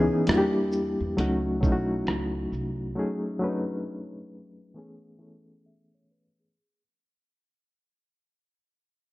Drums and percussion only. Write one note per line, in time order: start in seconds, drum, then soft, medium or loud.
0.27 cross-stick loud
0.27 closed hi-hat medium
0.72 shaker soft
1.18 closed hi-hat medium
1.63 kick medium
1.63 shaker soft
2.07 cross-stick loud
2.07 closed hi-hat medium
2.53 shaker soft